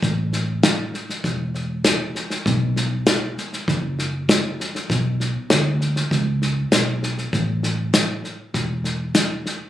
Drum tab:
HH |----p-------p---|----p-------p---|----p-------p---|----p-------p---|
SD |o-o-o-ooo-o-o-oo|o-o-o-ooo-o-o-oo|o-o-o-ooo-o-o-oo|o-o-o-o-o-o-o-o-|
BD |o---o---o---o---|o---o---o---o---|o---o---o---o---|o-------o-------|